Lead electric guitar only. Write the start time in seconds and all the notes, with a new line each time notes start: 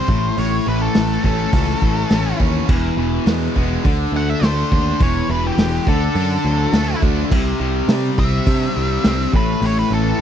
Already playing: C5
0.39 C#5
0.68 B4
0.82 A4
1.26 A4
4.16 F#5
4.30 E5
4.44 C5
5.03 C#5
5.31 B4
5.47 G4
5.89 A4
8.19 E5
9.36 B4
9.66 C#5
9.79 B4
9.94 A4